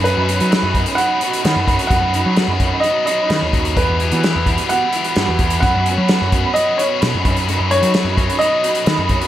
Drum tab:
HH |x-xxx-xxx-xxx-xx|x-x-x-x-x-x-x-xx|x-xxx-xxx-xxx-xx|x-x-x-x-x-x-x-xx|
SD |----o-------o---|----o-------o---|----o-------o---|----o-------o---|
BD |------o-------o-|o-----o-------o-|o-----o-------o-|o-----o-------o-|

HH |x-xxx-xxx-xxx-xx|
SD |----o-------o---|
BD |------o-------o-|